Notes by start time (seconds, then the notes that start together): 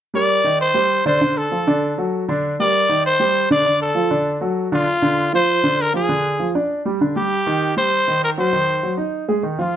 0.14 G3 G4 A#4 D5
0.44 D#3 D#4 D#5
0.61 C5
0.74 G3 G4 C5
1.05 D3 D4 C5 D5
1.21 D3 D4 D5
1.37 A4
1.51 F3 F4 A4
1.67 D3 D4 D5
1.98 F#3 F#4 A4
2.28 D3 D4 D5
2.60 G3 G4 A#4 D5
2.89 D#3 D#4 D#5
3.06 C5
3.20 G3 G4 C5
3.50 D3 D4 D5
3.66 D3 D4 D5
3.82 A4
3.95 F3 F4 A4
4.11 D3 D4 D5
4.41 F#3 F#4 A4
4.72 D3 D4 F4 D5
5.02 D3 D4
5.33 F3 F4 C5
5.63 D3 D4
5.81 A#4
5.94 F3 F4 G#4
6.09 D3 D4
6.39 F3 F4
6.55 D4 D5
6.85 G3 G4
7.01 D3 D4
7.16 G3 G4
7.46 D#3 D#4
7.77 G3 G4 C5
8.08 D#3 D#4
8.24 A#4
8.38 F#3 F#4 C5
8.53 D#3 D#4
8.83 F#3 F#4
8.97 D#4 D#5
9.28 G#3 G#4
9.43 D#3 D#4
9.58 F3 F4